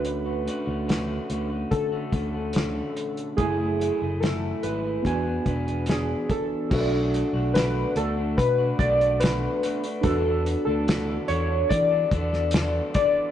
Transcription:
<<
  \new Staff \with { instrumentName = "Synth keys" } { \time 4/4 \key b \dorian \tempo 4 = 72 b'2 a'2 | gis'4 a'8 b'4. gis'8 a'8~ | a'4 b'8 a'8 b'8 d''8 b'4 | a'8. a'8. cis''8 d''4. d''8 | }
  \new Staff \with { instrumentName = "Tine electric piano" } { \time 4/4 \key b \dorian <a cis' d' fis'>2.~ <a cis' d' fis'>8 r8 | <gis a cis' e' gis''>2 <b d' fis' gis''>2 | <d' fis' a' b' d''>1 | <d' fis' a' b'>1 | }
  \new Staff \with { instrumentName = "Clean electric guitar" } { \time 4/4 \key b \dorian <d a cis' fis'>16 <a cis' fis'>16 <d a cis' fis'>16 <a cis' fis'>16 <d a cis' fis'>8 <d a cis' fis'>16 <a cis' fis'>8 <a cis' fis'>16 <d a cis' fis'>16 <a cis' fis'>16 <d a cis' fis'>4 | <fis a e' gis'>16 <a e' gis'>16 <fis a e' gis'>16 <a e' gis'>16 <fis a e'>8 <fis a e' gis'>16 <a e' gis'>16 <e b d' gis'>16 <b d' gis'>16 <e b d' gis'>16 <b d' gis'>16 <e b d'>4 | <b, a d' fis'>16 <a d' fis'>8 <a d' fis'>16 <b, a d' fis'>8 <b, a d' fis'>16 <a d' fis'>8 <a d' fis'>16 <b, a d' fis'>16 <a d' fis'>16 <b, a d' fis'>8 <b, a d' fis'>16 <a d' fis'>16 | <e b d' a'>16 <b d' a'>8 <b d' a'>16 <e b d' a'>8 <e b d' a'>16 <b d' a'>8 <b d' a'>16 <e b d' a'>16 <b d' a'>16 <e b d' a'>8 <e b d' a'>8 | }
  \new Staff \with { instrumentName = "Fingered electric bass" } { \clef bass \time 4/4 \key b \dorian d,8. d,8. d,8 d8 d,4 r8 | fis,,8. fis,,8. gis,,8 e,8 e,,4 r8 | b,,8. b,,8. d,8 b,8 b,,4 r8 | e,8. d,8. e,8 e8 e,4 r8 | }
  \new DrumStaff \with { instrumentName = "Drums" } \drummode { \time 4/4 hh8 hh8 <hh sn>8 hh8 <hh bd>8 <hh bd>8 <hh sn>8 hh16 hh16 | <hh bd>8 hh8 <hh sn>8 hh8 <hh bd>8 <hh bd>16 hh16 <hh sn>8 <hh bd>8 | <cymc bd>8 hh8 <hh sn>8 hh8 <hh bd>8 <hh bd>16 hh16 <hh sn>8 hh16 hh16 | <hh bd>8 hh8 <hh sn>8 hh8 <hh bd>8 <hh bd>16 sn16 <hh sn>8 <hh bd>8 | }
>>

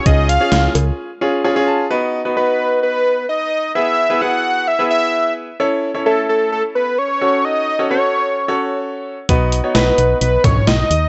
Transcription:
<<
  \new Staff \with { instrumentName = "Analog synth lead" } { \time 4/4 \key b \mixolydian \tempo 4 = 130 dis''8 eis''4 r2 r8 | r4 b'4 b'4 dis''4 | e''4 fis''4 e''8 e''4 r8 | r4 a'8 a'8 a'8 b'8 cis''4 |
dis''4 cis''2 r4 | r4 b'4 b'8 cis''8 dis''4 | }
  \new Staff \with { instrumentName = "Grand piano" } { \time 4/4 \key b \mixolydian << { r2 r8 eis''8 gis''8 a''8 | r1 | r1 | r1 |
r1 | r1 | } \\ { <cis' eis' gis'>8. <cis' eis' gis'>4. r16 <cis' eis' gis'>8 <cis' eis' gis'>16 <cis' eis' gis'>8. | <b dis' fis' b'>8. <b dis' fis' b'>16 <b dis' fis' b'>4.~ <b dis' fis' b'>16 r4 r16 | <b e' gis' b'>8. <b e' gis' b'>16 <b e' gis' b'>4 r16 <b e' gis' b'>4. r16 | <cis' e' a' cis''>8. <cis' e' a' cis''>16 <cis' e' a' e''>4.~ <cis' e' a' e''>16 r8. <cis' fis' a' cis''>8~ |
<cis' fis' a' cis''>8 r16 <cis' fis' a' cis''>16 <cis' fis' a' cis''>4 r16 <cis' fis' a' cis''>4. r16 | <b dis' fis' b'>8. <b dis' fis' cis''>16 <b dis' fis' b'>4.~ <b dis' fis' b'>16 r4 r16 | } >> }
  \new Staff \with { instrumentName = "FM bass" } { \clef bass \time 4/4 \key b \mixolydian cis,4 cis,8 cis,8 r2 | r1 | r1 | r1 |
r1 | b,,4 b,,8 b,,8 b,,8 b,,8 b,,8 dis,8 | }
  \new DrumStaff \with { instrumentName = "Drums" } \drummode { \time 4/4 <hh bd>8 hh8 <hh sn>8 <cb hh>8 r4 r4 | r4 r4 r4 r4 | r4 r4 r4 r4 | r4 r4 r4 r4 |
r4 r4 r4 r4 | <hh bd>8 hh8 <hh sn>8 hh8 hh8 <cb hh bd toml>8 <hh sn>8 hh8 | }
>>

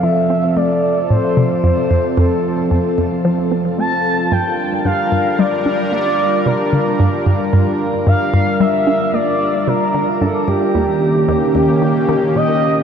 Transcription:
<<
  \new Staff \with { instrumentName = "Analog synth lead" } { \time 4/4 \key g \dorian \tempo 4 = 112 e''4 d''4 c''4 c''4 | a'2 r4 a''4 | g''4 f''4 d''4 d''4 | bes'2 r4 f''4 |
e''4 d''4 bes'4 a'8 g'8~ | g'2. ees''4 | }
  \new Staff \with { instrumentName = "Analog synth pad" } { \time 4/4 \key g \dorian << { <f c' a'>1~ | <f c' a'>1 | <g d' bes'>1~ | <g d' bes'>1~ |
<g d' bes'>1 | <ees bes g'>1 | } \\ { f'1~ | f'1~ | f'1~ | f'1~ |
f'1 | des'1 | } >> }
  \new Staff \with { instrumentName = "Synth arpeggio sound" } { \clef bass \time 4/4 \key g \dorian f8 c'8 a8 r8 a,8 c16 r16 f,8 f,8 | f,16 r8. f,8 f,16 r16 f8 c'8 a8 r8 | g,16 r8. g,8 g,16 r16 g8 d'8 bes8 r8 | c8 d16 r16 g,8 g,8 g,16 r8. g,8 g,16 r16 |
g8 d'8 bes8 r8 c8 d16 r16 g,8 g,8 | ees,16 r8. ees,8 ees,16 r16 ees8 ees8 bes,16 r8. | }
>>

